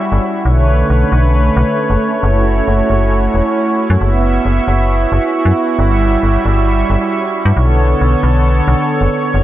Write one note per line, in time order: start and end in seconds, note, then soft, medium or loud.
0.00 0.44 G3 medium
0.00 0.44 C#4 medium
0.00 0.41 E4 medium
0.00 0.44 F#4 medium
0.00 0.42 E5 medium
0.00 0.44 C#6 medium
0.12 0.19 G1 medium
0.45 0.84 B1 loud
0.45 2.21 D3 medium
0.45 3.97 A3 medium
0.45 9.44 C#4 medium
0.45 2.21 B4 medium
0.45 3.98 C#5 medium
0.45 9.44 C#6 medium
0.90 1.04 B1 medium
1.12 1.50 B1 medium
1.56 1.64 B1 loud
1.90 1.97 F#1 medium
2.23 2.61 F#1 loud
2.23 7.53 E4 medium
2.23 3.99 F#4 medium
2.68 2.82 F#1 medium
2.90 3.28 F#1 medium
3.34 3.42 E1 medium
3.90 3.97 F#2 loud
4.01 4.39 F#1 loud
4.01 5.77 B3 medium
4.01 7.53 F#4 medium
4.01 5.77 E5 medium
4.45 4.60 F#1 medium
4.68 5.06 F#1 medium
5.12 5.19 F#1 loud
5.45 5.53 F#2 medium
5.79 6.17 G1 loud
5.79 7.55 G3 medium
5.79 7.55 E5 medium
6.23 6.38 G1 medium
6.45 6.84 G1 medium
6.90 6.97 G1 medium
7.45 7.53 G2 medium
7.56 7.95 B1 loud
7.56 9.32 D3 medium
7.56 9.32 B3 medium
7.56 9.32 A4 medium
7.56 9.44 C#5 medium
8.01 8.15 B1 medium
8.23 8.61 B1 medium
8.68 8.75 B1 loud
9.01 9.08 F#1 medium
9.34 9.44 F#1 loud
9.34 9.44 A3 medium
9.34 9.44 E4 medium
9.34 9.44 F#4 medium